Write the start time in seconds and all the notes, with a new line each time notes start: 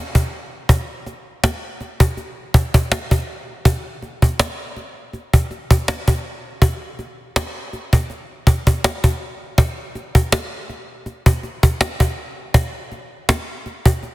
0.15 cajon bass
0.69 cajon bass
1.06 cajon slap
1.44 cajon slap
1.81 cajon slap
2.00 cajon bass
2.17 cajon slap
2.54 cajon bass
2.74 cajon bass
2.92 cajon slap
3.11 cajon bass
3.65 cajon bass
4.02 cajon slap
4.22 cajon bass
4.39 cajon slap
4.76 cajon slap
5.13 cajon slap
5.33 cajon bass
5.51 cajon slap
5.71 cajon bass
5.88 cajon slap
6.08 cajon bass
6.62 cajon bass
6.99 cajon slap
7.36 cajon slap
7.73 cajon slap
7.93 cajon bass
8.10 cajon slap
8.47 cajon bass
8.67 cajon bass
8.84 cajon slap
9.04 cajon bass
9.58 cajon bass
9.95 cajon slap
10.15 cajon bass
10.32 cajon slap
10.69 cajon slap
11.06 cajon slap
11.26 cajon bass
11.43 cajon slap
11.63 cajon bass
11.81 cajon slap
12.00 cajon bass
12.54 cajon bass
12.92 cajon slap
13.29 cajon slap
13.66 cajon slap
13.86 cajon bass
14.03 cajon slap